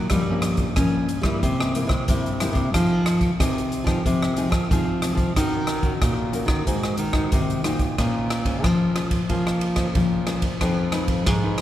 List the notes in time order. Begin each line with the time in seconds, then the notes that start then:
0.10 G2 F3 G3 A#3 C#4, kick, cross-stick, closed hi-hat
0.30 F3 A#3 C#4
0.42 cross-stick, closed hi-hat
0.57 kick, closed hi-hat
0.76 G2 F3 A#3 C#4, kick, cross-stick, closed hi-hat
1.09 closed hi-hat
1.22 G3 A#3 E4, kick, cross-stick
1.43 C3, kick, closed hi-hat
1.60 cross-stick
1.75 G3 A#3 E4, closed hi-hat
1.87 C3, kick, cross-stick
2.08 G2 C3 G3 A#3 E4, kick, closed hi-hat
2.26 closed hi-hat
2.40 G3 A#3 E4, cross-stick, closed hi-hat
2.53 C3, kick, closed hi-hat
2.74 F3 C4 D#4 G#4, kick, cross-stick, closed hi-hat
3.06 cross-stick, closed hi-hat
3.21 kick, closed hi-hat
3.39 C3 C4 D#4 G#4, kick, cross-stick, closed hi-hat
3.58 closed hi-hat
3.72 closed hi-hat
3.84 F3 C4 D#4 G#4, kick, cross-stick, closed hi-hat
4.06 C3 F3, kick, closed hi-hat
4.23 cross-stick
4.37 C4 D#4 G#4, closed hi-hat
4.50 F3, kick, cross-stick, closed hi-hat
4.71 C3 F3 C4 D#4 G#4, kick, closed hi-hat
5.02 C4 D#4 G#4, cross-stick, closed hi-hat
5.15 F3, kick, closed hi-hat
5.36 D#3 C#4 F#4 A#4, kick, cross-stick, closed hi-hat
5.67 cross-stick, closed hi-hat
5.83 C#4 F#4 A#4, kick, closed hi-hat
6.02 A#2, kick, cross-stick, closed hi-hat
6.33 C#4 F#4 A#4, closed hi-hat
6.46 D#3, kick, cross-stick
6.67 G#2 G#3 D#4 F#4 C5, kick, closed hi-hat
6.83 cross-stick
6.97 D#3, closed hi-hat
7.13 D#4 F#4 C5, kick, cross-stick
7.32 C3 D#3, kick, closed hi-hat
7.50 closed hi-hat
7.64 A#2 D#4 F#4 C5, cross-stick, closed hi-hat
7.79 kick, closed hi-hat
7.98 A#2 A#3 C#4 G#4 C5, kick, cross-stick, ride
8.30 cross-stick, ride
8.45 C#4 G#4 C5, kick, ride
8.64 F3, kick, cross-stick, ride
8.96 C#4 G#4 C5, cross-stick, ride
9.11 kick, ride
9.29 F3 A#3 C#4 G#4 C5, kick, ride
9.47 cross-stick
9.61 ride
9.76 C#4 G#4 C5, kick, cross-stick, ride
9.95 A#2 F3, kick, ride
10.27 C#4 G#4 C5, cross-stick, ride
10.42 kick, ride
10.61 F2 F3 D#4 G#4 B4, kick, cross-stick, ride
10.92 D#4 G#4 B4, cross-stick, ride
11.08 kick, ride
11.26 G#2 F3, kick, cross-stick, ride
11.44 D#4 G#4 B4
11.58 cross-stick, ride